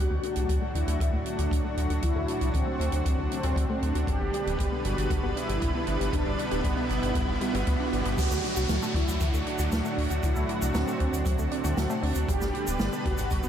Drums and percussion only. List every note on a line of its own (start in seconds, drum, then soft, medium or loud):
0.23 closed hi-hat medium
0.23 mid tom medium
0.36 closed hi-hat medium
0.49 kick loud
0.49 closed hi-hat loud
0.75 closed hi-hat medium
0.75 mid tom medium
0.88 closed hi-hat medium
1.00 kick loud
1.00 closed hi-hat loud
1.00 mid tom medium
1.26 closed hi-hat medium
1.38 closed hi-hat medium
1.38 mid tom medium
1.51 kick medium
1.51 closed hi-hat loud
1.77 closed hi-hat medium
1.77 mid tom medium
1.90 closed hi-hat medium
2.02 kick medium
2.02 closed hi-hat loud
2.02 mid tom medium
2.28 closed hi-hat medium
2.41 closed hi-hat medium
2.54 kick medium
2.54 closed hi-hat medium
2.80 closed hi-hat medium
2.80 mid tom medium
2.92 closed hi-hat medium
3.05 kick loud
3.05 closed hi-hat loud
3.05 mid tom medium
3.31 closed hi-hat medium
3.43 closed hi-hat medium
3.43 mid tom loud
3.43 mid tom medium
3.56 kick medium
3.56 closed hi-hat loud
3.83 closed hi-hat medium
3.83 mid tom medium
3.95 closed hi-hat medium
4.07 kick loud
4.07 closed hi-hat medium
4.07 mid tom medium
4.33 closed hi-hat medium
4.33 mid tom medium
4.47 closed hi-hat medium
4.59 kick medium
4.59 closed hi-hat loud
4.59 mid tom medium
4.85 closed hi-hat medium
4.85 mid tom medium
4.98 closed hi-hat medium
5.10 kick loud
5.10 closed hi-hat loud
5.10 mid tom medium
5.37 closed hi-hat medium
5.37 mid tom medium
5.49 closed hi-hat medium
5.61 kick medium
5.61 closed hi-hat medium
5.61 mid tom medium
5.87 closed hi-hat medium
5.87 mid tom medium
6.01 closed hi-hat medium
6.13 kick loud
6.13 closed hi-hat loud
6.13 mid tom loud
6.26 mid tom medium
6.38 closed hi-hat medium
6.38 mid tom medium
6.51 closed hi-hat medium
6.51 mid tom medium
6.64 kick loud
6.64 closed hi-hat loud
6.64 mid tom medium
6.77 mid tom medium
6.89 closed hi-hat medium
6.89 mid tom loud
7.03 closed hi-hat medium
7.03 mid tom medium
7.15 kick loud
7.15 closed hi-hat loud
7.15 mid tom loud
7.22 mid tom medium
7.29 mid tom medium
7.35 mid tom medium
7.41 closed hi-hat medium
7.41 mid tom loud
7.48 mid tom medium
7.54 closed hi-hat medium
7.54 mid tom loud
7.54 mid tom medium
7.60 mid tom medium
7.67 kick medium
7.67 closed hi-hat medium
7.67 mid tom loud
7.74 mid tom medium
7.80 mid tom medium
7.87 mid tom medium
7.93 closed hi-hat medium
7.93 mid tom loud
8.00 mid tom medium
8.05 closed hi-hat medium
8.05 mid tom loud
8.12 mid tom medium
8.18 kick loud
8.18 closed hi-hat loud
8.18 crash loud
8.18 shaker medium
8.31 snare soft
8.31 shaker soft
8.44 closed hi-hat medium
8.44 mid tom medium
8.56 closed hi-hat medium
8.56 shaker medium
8.69 snare loud
8.69 closed hi-hat loud
8.69 shaker medium
8.83 shaker soft
8.94 kick loud
8.94 closed hi-hat medium
9.08 closed hi-hat medium
9.08 shaker medium
9.21 kick loud
9.21 closed hi-hat loud
9.21 shaker medium
9.34 shaker soft
9.46 closed hi-hat medium
9.59 closed hi-hat medium
9.59 shaker medium
9.72 snare loud
9.72 closed hi-hat loud
9.72 shaker medium
9.85 shaker medium
9.98 open hi-hat medium
10.10 closed hi-hat medium
10.10 shaker medium
10.23 kick loud
10.23 closed hi-hat loud
10.23 shaker medium
10.36 shaker soft
10.49 closed hi-hat medium
10.62 closed hi-hat medium
10.62 shaker medium
10.75 snare loud
10.75 closed hi-hat medium
10.75 shaker medium
10.88 shaker soft
11.00 kick medium
11.00 closed hi-hat medium
11.14 closed hi-hat medium
11.14 shaker medium
11.26 kick loud
11.26 closed hi-hat loud
11.26 shaker medium
11.39 shaker soft
11.51 closed hi-hat medium
11.64 closed hi-hat medium
11.64 mid tom loud
11.64 shaker medium
11.77 snare loud
11.77 closed hi-hat loud
11.77 shaker medium
11.90 shaker soft
12.03 open hi-hat loud
12.15 closed hi-hat medium
12.15 shaker medium
12.29 kick loud
12.29 closed hi-hat loud
12.29 shaker medium
12.41 snare soft
12.41 shaker medium
12.54 closed hi-hat medium
12.54 mid tom medium
12.67 closed hi-hat medium
12.67 shaker medium
12.80 snare loud
12.80 closed hi-hat loud
12.80 shaker medium
12.93 shaker soft
13.05 kick loud
13.05 closed hi-hat medium
13.18 closed hi-hat medium
13.18 shaker medium
13.31 kick loud
13.31 closed hi-hat loud
13.31 shaker medium
13.43 shaker soft